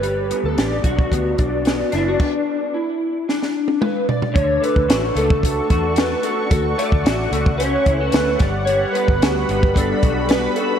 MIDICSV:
0, 0, Header, 1, 6, 480
1, 0, Start_track
1, 0, Key_signature, 2, "major"
1, 0, Tempo, 540541
1, 28, Time_signature, 4, 2, 24, 8
1, 9584, End_track
2, 0, Start_track
2, 0, Title_t, "Analog synth pad"
2, 0, Program_c, 0, 89
2, 3878, Note_on_c, 0, 69, 75
2, 3881, Note_on_c, 0, 85, 79
2, 3882, Note_on_c, 0, 78, 63
2, 7437, Note_off_c, 0, 69, 0
2, 7439, Note_off_c, 0, 85, 0
2, 7458, Note_on_c, 0, 55, 85
2, 7468, Note_on_c, 0, 83, 97
2, 9584, Note_off_c, 0, 55, 0
2, 9584, Note_off_c, 0, 78, 0
2, 9584, Note_off_c, 0, 83, 0
2, 9584, End_track
3, 0, Start_track
3, 0, Title_t, "Electric slide guitar"
3, 0, Program_c, 1, 29
3, 0, Note_on_c, 1, 71, 87
3, 400, Note_off_c, 1, 71, 0
3, 403, Note_on_c, 1, 69, 81
3, 519, Note_off_c, 1, 69, 0
3, 523, Note_on_c, 1, 67, 78
3, 740, Note_off_c, 1, 67, 0
3, 744, Note_on_c, 1, 66, 87
3, 1724, Note_off_c, 1, 66, 0
3, 1727, Note_on_c, 1, 64, 71
3, 1842, Note_off_c, 1, 64, 0
3, 1849, Note_on_c, 1, 66, 84
3, 1959, Note_off_c, 1, 66, 0
3, 1959, Note_on_c, 1, 62, 91
3, 2401, Note_off_c, 1, 62, 0
3, 2433, Note_on_c, 1, 64, 70
3, 2915, Note_off_c, 1, 64, 0
3, 2919, Note_on_c, 1, 62, 76
3, 3382, Note_on_c, 1, 71, 93
3, 3599, Note_off_c, 1, 62, 0
3, 3626, Note_off_c, 1, 71, 0
3, 3630, Note_on_c, 1, 74, 88
3, 3857, Note_off_c, 1, 74, 0
3, 3860, Note_on_c, 1, 73, 121
3, 4088, Note_off_c, 1, 73, 0
3, 4112, Note_on_c, 1, 71, 95
3, 4557, Note_off_c, 1, 71, 0
3, 4594, Note_on_c, 1, 69, 98
3, 5308, Note_on_c, 1, 71, 106
3, 5333, Note_off_c, 1, 69, 0
3, 5535, Note_on_c, 1, 69, 90
3, 5556, Note_off_c, 1, 71, 0
3, 5767, Note_off_c, 1, 69, 0
3, 5778, Note_on_c, 1, 69, 108
3, 6019, Note_on_c, 1, 74, 102
3, 6031, Note_off_c, 1, 69, 0
3, 6727, Note_off_c, 1, 74, 0
3, 6730, Note_on_c, 1, 73, 108
3, 7085, Note_off_c, 1, 73, 0
3, 7085, Note_on_c, 1, 71, 108
3, 7185, Note_off_c, 1, 71, 0
3, 7203, Note_on_c, 1, 71, 95
3, 7448, Note_on_c, 1, 74, 84
3, 7463, Note_off_c, 1, 71, 0
3, 7678, Note_off_c, 1, 74, 0
3, 7681, Note_on_c, 1, 73, 116
3, 7925, Note_on_c, 1, 71, 111
3, 7942, Note_off_c, 1, 73, 0
3, 8621, Note_off_c, 1, 71, 0
3, 8652, Note_on_c, 1, 69, 98
3, 9134, Note_on_c, 1, 71, 94
3, 9154, Note_off_c, 1, 69, 0
3, 9370, Note_on_c, 1, 69, 82
3, 9388, Note_off_c, 1, 71, 0
3, 9584, Note_off_c, 1, 69, 0
3, 9584, End_track
4, 0, Start_track
4, 0, Title_t, "Clean electric guitar"
4, 0, Program_c, 2, 27
4, 23, Note_on_c, 2, 55, 76
4, 268, Note_on_c, 2, 59, 60
4, 509, Note_on_c, 2, 62, 58
4, 757, Note_on_c, 2, 66, 71
4, 994, Note_off_c, 2, 59, 0
4, 997, Note_on_c, 2, 59, 61
4, 1224, Note_off_c, 2, 62, 0
4, 1227, Note_on_c, 2, 62, 55
4, 1467, Note_off_c, 2, 59, 0
4, 1470, Note_on_c, 2, 59, 60
4, 1700, Note_off_c, 2, 62, 0
4, 1703, Note_on_c, 2, 62, 54
4, 2001, Note_off_c, 2, 66, 0
4, 2438, Note_off_c, 2, 62, 0
4, 2442, Note_off_c, 2, 59, 0
4, 2445, Note_off_c, 2, 55, 0
4, 3853, Note_on_c, 2, 50, 84
4, 4095, Note_on_c, 2, 57, 69
4, 4336, Note_on_c, 2, 66, 71
4, 4569, Note_off_c, 2, 57, 0
4, 4580, Note_on_c, 2, 57, 76
4, 5061, Note_off_c, 2, 66, 0
4, 5065, Note_on_c, 2, 66, 70
4, 5293, Note_off_c, 2, 57, 0
4, 5303, Note_on_c, 2, 57, 65
4, 5532, Note_off_c, 2, 66, 0
4, 5535, Note_on_c, 2, 66, 68
4, 6010, Note_off_c, 2, 57, 0
4, 6021, Note_on_c, 2, 57, 69
4, 6252, Note_off_c, 2, 66, 0
4, 6256, Note_on_c, 2, 66, 72
4, 6488, Note_off_c, 2, 57, 0
4, 6498, Note_on_c, 2, 57, 73
4, 6743, Note_on_c, 2, 61, 69
4, 6770, Note_off_c, 2, 50, 0
4, 6977, Note_off_c, 2, 66, 0
4, 6981, Note_on_c, 2, 64, 67
4, 7107, Note_off_c, 2, 64, 0
4, 7107, Note_on_c, 2, 66, 57
4, 7214, Note_off_c, 2, 57, 0
4, 7224, Note_on_c, 2, 57, 64
4, 7467, Note_on_c, 2, 55, 80
4, 7514, Note_off_c, 2, 57, 0
4, 7514, Note_off_c, 2, 61, 0
4, 7516, Note_off_c, 2, 66, 0
4, 7710, Note_off_c, 2, 55, 0
4, 7714, Note_on_c, 2, 55, 86
4, 7946, Note_on_c, 2, 59, 70
4, 8184, Note_on_c, 2, 66, 68
4, 8425, Note_off_c, 2, 59, 0
4, 8429, Note_on_c, 2, 59, 74
4, 8670, Note_on_c, 2, 62, 65
4, 8895, Note_off_c, 2, 66, 0
4, 8906, Note_on_c, 2, 66, 60
4, 9143, Note_off_c, 2, 59, 0
4, 9147, Note_on_c, 2, 59, 67
4, 9378, Note_off_c, 2, 66, 0
4, 9389, Note_on_c, 2, 66, 63
4, 9584, Note_off_c, 2, 55, 0
4, 9584, Note_off_c, 2, 59, 0
4, 9584, Note_off_c, 2, 62, 0
4, 9584, Note_off_c, 2, 66, 0
4, 9584, End_track
5, 0, Start_track
5, 0, Title_t, "Fingered electric bass"
5, 0, Program_c, 3, 33
5, 0, Note_on_c, 3, 31, 87
5, 270, Note_off_c, 3, 31, 0
5, 388, Note_on_c, 3, 38, 81
5, 484, Note_off_c, 3, 38, 0
5, 512, Note_on_c, 3, 33, 81
5, 702, Note_off_c, 3, 33, 0
5, 747, Note_on_c, 3, 35, 79
5, 940, Note_off_c, 3, 35, 0
5, 990, Note_on_c, 3, 38, 88
5, 1181, Note_off_c, 3, 38, 0
5, 1235, Note_on_c, 3, 35, 84
5, 1616, Note_off_c, 3, 35, 0
5, 1715, Note_on_c, 3, 30, 83
5, 1904, Note_off_c, 3, 30, 0
5, 3869, Note_on_c, 3, 38, 91
5, 4061, Note_off_c, 3, 38, 0
5, 4229, Note_on_c, 3, 38, 109
5, 4325, Note_off_c, 3, 38, 0
5, 4342, Note_on_c, 3, 33, 91
5, 4537, Note_off_c, 3, 33, 0
5, 4577, Note_on_c, 3, 37, 91
5, 4966, Note_off_c, 3, 37, 0
5, 5065, Note_on_c, 3, 40, 83
5, 5450, Note_off_c, 3, 40, 0
5, 5780, Note_on_c, 3, 38, 91
5, 5975, Note_off_c, 3, 38, 0
5, 6147, Note_on_c, 3, 38, 108
5, 6244, Note_off_c, 3, 38, 0
5, 6260, Note_on_c, 3, 33, 105
5, 6455, Note_off_c, 3, 33, 0
5, 6493, Note_on_c, 3, 37, 101
5, 6883, Note_off_c, 3, 37, 0
5, 6982, Note_on_c, 3, 37, 88
5, 7176, Note_off_c, 3, 37, 0
5, 7221, Note_on_c, 3, 38, 89
5, 7416, Note_off_c, 3, 38, 0
5, 7462, Note_on_c, 3, 31, 101
5, 7849, Note_off_c, 3, 31, 0
5, 8069, Note_on_c, 3, 31, 111
5, 8165, Note_off_c, 3, 31, 0
5, 8184, Note_on_c, 3, 38, 105
5, 8377, Note_off_c, 3, 38, 0
5, 8426, Note_on_c, 3, 31, 97
5, 8811, Note_off_c, 3, 31, 0
5, 8908, Note_on_c, 3, 35, 93
5, 9292, Note_off_c, 3, 35, 0
5, 9584, End_track
6, 0, Start_track
6, 0, Title_t, "Drums"
6, 29, Note_on_c, 9, 42, 73
6, 118, Note_off_c, 9, 42, 0
6, 274, Note_on_c, 9, 42, 64
6, 362, Note_off_c, 9, 42, 0
6, 513, Note_on_c, 9, 42, 76
6, 519, Note_on_c, 9, 38, 84
6, 602, Note_off_c, 9, 42, 0
6, 608, Note_off_c, 9, 38, 0
6, 746, Note_on_c, 9, 36, 78
6, 747, Note_on_c, 9, 42, 68
6, 835, Note_off_c, 9, 36, 0
6, 835, Note_off_c, 9, 42, 0
6, 875, Note_on_c, 9, 36, 99
6, 964, Note_off_c, 9, 36, 0
6, 992, Note_on_c, 9, 36, 86
6, 1001, Note_on_c, 9, 42, 89
6, 1080, Note_off_c, 9, 36, 0
6, 1090, Note_off_c, 9, 42, 0
6, 1229, Note_on_c, 9, 42, 59
6, 1233, Note_on_c, 9, 36, 83
6, 1318, Note_off_c, 9, 42, 0
6, 1322, Note_off_c, 9, 36, 0
6, 1467, Note_on_c, 9, 42, 67
6, 1486, Note_on_c, 9, 38, 88
6, 1556, Note_off_c, 9, 42, 0
6, 1575, Note_off_c, 9, 38, 0
6, 1707, Note_on_c, 9, 42, 66
6, 1715, Note_on_c, 9, 38, 30
6, 1796, Note_off_c, 9, 42, 0
6, 1804, Note_off_c, 9, 38, 0
6, 1951, Note_on_c, 9, 49, 80
6, 1952, Note_on_c, 9, 36, 98
6, 2040, Note_off_c, 9, 36, 0
6, 2040, Note_off_c, 9, 49, 0
6, 2922, Note_on_c, 9, 38, 52
6, 3011, Note_off_c, 9, 38, 0
6, 3042, Note_on_c, 9, 38, 46
6, 3131, Note_off_c, 9, 38, 0
6, 3267, Note_on_c, 9, 48, 56
6, 3355, Note_off_c, 9, 48, 0
6, 3389, Note_on_c, 9, 47, 82
6, 3478, Note_off_c, 9, 47, 0
6, 3631, Note_on_c, 9, 43, 85
6, 3720, Note_off_c, 9, 43, 0
6, 3750, Note_on_c, 9, 43, 76
6, 3839, Note_off_c, 9, 43, 0
6, 3869, Note_on_c, 9, 36, 106
6, 3869, Note_on_c, 9, 42, 75
6, 3958, Note_off_c, 9, 36, 0
6, 3958, Note_off_c, 9, 42, 0
6, 4117, Note_on_c, 9, 42, 79
6, 4206, Note_off_c, 9, 42, 0
6, 4228, Note_on_c, 9, 36, 81
6, 4317, Note_off_c, 9, 36, 0
6, 4349, Note_on_c, 9, 42, 99
6, 4355, Note_on_c, 9, 38, 106
6, 4438, Note_off_c, 9, 42, 0
6, 4444, Note_off_c, 9, 38, 0
6, 4587, Note_on_c, 9, 42, 76
6, 4675, Note_off_c, 9, 42, 0
6, 4710, Note_on_c, 9, 36, 117
6, 4798, Note_off_c, 9, 36, 0
6, 4824, Note_on_c, 9, 36, 86
6, 4837, Note_on_c, 9, 42, 95
6, 4913, Note_off_c, 9, 36, 0
6, 4926, Note_off_c, 9, 42, 0
6, 5063, Note_on_c, 9, 42, 79
6, 5065, Note_on_c, 9, 36, 92
6, 5152, Note_off_c, 9, 42, 0
6, 5154, Note_off_c, 9, 36, 0
6, 5294, Note_on_c, 9, 42, 88
6, 5313, Note_on_c, 9, 38, 114
6, 5383, Note_off_c, 9, 42, 0
6, 5402, Note_off_c, 9, 38, 0
6, 5534, Note_on_c, 9, 42, 69
6, 5623, Note_off_c, 9, 42, 0
6, 5780, Note_on_c, 9, 42, 81
6, 5782, Note_on_c, 9, 36, 116
6, 5869, Note_off_c, 9, 42, 0
6, 5871, Note_off_c, 9, 36, 0
6, 6028, Note_on_c, 9, 42, 85
6, 6117, Note_off_c, 9, 42, 0
6, 6146, Note_on_c, 9, 36, 90
6, 6235, Note_off_c, 9, 36, 0
6, 6270, Note_on_c, 9, 42, 96
6, 6275, Note_on_c, 9, 38, 114
6, 6358, Note_off_c, 9, 42, 0
6, 6364, Note_off_c, 9, 38, 0
6, 6506, Note_on_c, 9, 42, 81
6, 6595, Note_off_c, 9, 42, 0
6, 6627, Note_on_c, 9, 36, 113
6, 6715, Note_off_c, 9, 36, 0
6, 6748, Note_on_c, 9, 42, 99
6, 6837, Note_off_c, 9, 42, 0
6, 6981, Note_on_c, 9, 42, 74
6, 6983, Note_on_c, 9, 36, 91
6, 7070, Note_off_c, 9, 42, 0
6, 7071, Note_off_c, 9, 36, 0
6, 7212, Note_on_c, 9, 42, 91
6, 7231, Note_on_c, 9, 38, 121
6, 7301, Note_off_c, 9, 42, 0
6, 7320, Note_off_c, 9, 38, 0
6, 7454, Note_on_c, 9, 42, 70
6, 7462, Note_on_c, 9, 36, 115
6, 7462, Note_on_c, 9, 38, 33
6, 7543, Note_off_c, 9, 42, 0
6, 7551, Note_off_c, 9, 36, 0
6, 7551, Note_off_c, 9, 38, 0
6, 7701, Note_on_c, 9, 42, 79
6, 7790, Note_off_c, 9, 42, 0
6, 7949, Note_on_c, 9, 42, 78
6, 8038, Note_off_c, 9, 42, 0
6, 8066, Note_on_c, 9, 36, 90
6, 8154, Note_off_c, 9, 36, 0
6, 8190, Note_on_c, 9, 42, 99
6, 8196, Note_on_c, 9, 38, 117
6, 8279, Note_off_c, 9, 42, 0
6, 8285, Note_off_c, 9, 38, 0
6, 8427, Note_on_c, 9, 42, 76
6, 8516, Note_off_c, 9, 42, 0
6, 8551, Note_on_c, 9, 36, 108
6, 8640, Note_off_c, 9, 36, 0
6, 8666, Note_on_c, 9, 36, 94
6, 8676, Note_on_c, 9, 42, 99
6, 8755, Note_off_c, 9, 36, 0
6, 8764, Note_off_c, 9, 42, 0
6, 8904, Note_on_c, 9, 42, 74
6, 8906, Note_on_c, 9, 36, 92
6, 8993, Note_off_c, 9, 42, 0
6, 8995, Note_off_c, 9, 36, 0
6, 9135, Note_on_c, 9, 42, 81
6, 9154, Note_on_c, 9, 38, 114
6, 9224, Note_off_c, 9, 42, 0
6, 9243, Note_off_c, 9, 38, 0
6, 9376, Note_on_c, 9, 42, 65
6, 9465, Note_off_c, 9, 42, 0
6, 9584, End_track
0, 0, End_of_file